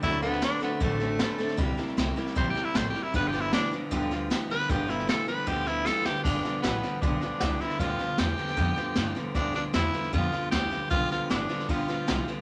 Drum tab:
CC |----------------|----------------|----------------|----------------|
HH |----p-------p---|----p-------p---|----p-------p---|----p-------p---|
SD |o-ooo-o-o-o-o-oo|o-ooo-ooo-o-o-o-|o-o-o-o-o-o-o-oo|o-ooo-o-o-o-o-o-|
BD |o-------o-------|o-------o-------|o-------o-------|o-------o-------|

CC |x---------------|----------------|----------------|----------------|
HH |----p-------p---|----p-------p---|----p-------p---|----p-------p---|
SD |o-o-o-o-o-o-o-oo|o-o-o-ooo-o-o-o-|o-o-o-ooo-o-o-o-|o-o-o-ooo-o-o-o-|
BD |o-------o-------|o-------o-------|o-------o-------|o-------o-------|